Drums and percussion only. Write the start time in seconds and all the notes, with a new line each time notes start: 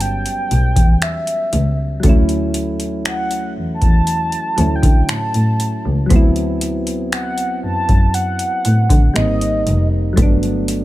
0.00 closed hi-hat
0.26 closed hi-hat
0.51 closed hi-hat
0.76 kick, closed hi-hat
1.02 finger snap, closed hi-hat
1.27 closed hi-hat
1.53 closed hi-hat
2.03 kick, closed hi-hat
2.29 closed hi-hat
2.54 closed hi-hat
2.80 closed hi-hat
3.05 finger snap, closed hi-hat
3.31 closed hi-hat
3.82 kick, closed hi-hat
4.07 closed hi-hat
4.32 closed hi-hat
4.58 closed hi-hat
4.83 kick, closed hi-hat
5.09 finger snap, closed hi-hat
5.34 closed hi-hat
5.60 closed hi-hat
6.10 kick, closed hi-hat
6.36 closed hi-hat
6.61 closed hi-hat
6.87 closed hi-hat
7.12 finger snap, closed hi-hat
7.38 closed hi-hat
7.89 kick, closed hi-hat
8.14 closed hi-hat
8.39 closed hi-hat
8.65 closed hi-hat
8.90 kick, closed hi-hat
9.16 finger snap, closed hi-hat
9.41 closed hi-hat
9.67 closed hi-hat
10.17 kick, closed hi-hat
10.43 closed hi-hat
10.68 closed hi-hat